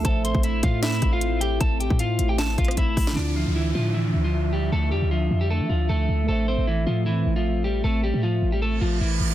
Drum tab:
HH |x-----x-----x-----x-----x-----x-----x-----x-----|x-----x-----x-----x-----x-----x-x-x-x-----o-----|------------------------------------------------|------------------------------------------------|
SD |------------------------o-----------------------|------------------------o--------r-----------o--|------------------------------------------------|------------------------------------------------|
BD |o--------o--------o-----------o-----------------|o--------o--------------------o-----o-----o-----|------------------------------------------------|------------------------------------------------|

HH |------------------------------------------------|------------------------------------------------|
SD |------------------------------------------------|------------------------------------------------|
BD |------------------------------------------------|------------------------------------------------|